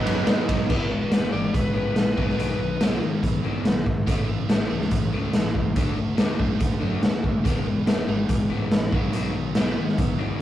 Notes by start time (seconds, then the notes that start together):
Already playing: B2 F#3 B3 D#4 B4
0.05 F#2 F#3 B3 D#4, snare, ride
0.27 D#2 B2 F#3 B3 D#4, snare, ride, cowbell
0.48 B1 F#3 B3 D#4, kick, ride
0.69 E1 E2 B2 E3 G#3 B3 E4, kick, crash
0.89 E1 E3 G#3 F#4
1.10 E1 E3 G#3 B3 B4, snare, closed hi-hat
1.23 snare
1.32 G#1 E2 B2 E3 G#3 D5
1.53 E1 E3 G#3 B4, kick, closed hi-hat
1.74 A1 E3 G#3 B3 B4
1.96 A#1 E3 G#3, snare, closed hi-hat
2.17 B1 B2 D#3 F#3 B3, kick
2.29 snare
2.37 B1 B2 D#3 F#3, closed hi-hat
2.59 B1 B2 D#3
2.80 B1 B2 D#3 F#3 B3, snare, closed hi-hat
3.01 D#2 B2 D#3
3.23 B1 B2 D#3, kick, closed hi-hat
3.43 E2 B2 D#3 F#3
3.65 B1 B2 D#3, snare, closed hi-hat
3.86 A1 B2 D#3, kick
4.07 A1 A2 E3 A3, kick, closed hi-hat
4.29 A1 A2 E3
4.49 A1 A2 E3 A3, snare, closed hi-hat
4.70 C#2 A2 E3 A3
4.81 snare
4.91 A1 A2 E3, kick, closed hi-hat
5.12 C#2 A2 E3 A3
5.33 A1 A2 E3, snare, closed hi-hat
5.55 F#1 A2 E3, kick
5.76 D2 D3 A3 D4, kick, closed hi-hat
5.97 D2 D3 A3
6.17 D2 D3 A3 D4, snare, closed hi-hat
6.39 F#2 D3 A3 D4, kick
6.59 D2 D3 A3, kick, closed hi-hat
6.80 F#2 D3 A3 D4
7.02 D2 D3 A3, snare, closed hi-hat
7.23 D2 D3 A3, kick
7.44 E1 E2 B2 E3 G#3 B3, kick, closed hi-hat
7.65 E1 E3 G#3
7.86 E1 E3 G#3 B3, snare, closed hi-hat
8.08 G#1 E2 B2 E3 G#3
8.29 E1 E3 G#3, kick, closed hi-hat
8.50 A1 E3 G#3 B3
8.71 A1 E3 G#3, snare, closed hi-hat
8.92 B1 B2 D#3 F#3 B3, kick
9.13 B1 B2 D#3 F#3, closed hi-hat
9.35 B1 B2 D#3
9.55 B1 B2 D#3 F#3, snare, closed hi-hat
9.59 B3
9.67 snare
9.77 D#2 B2 D#3
9.88 snare
9.98 B1 B2 D#3, kick, closed hi-hat
10.18 E2 B2 D#3 F#3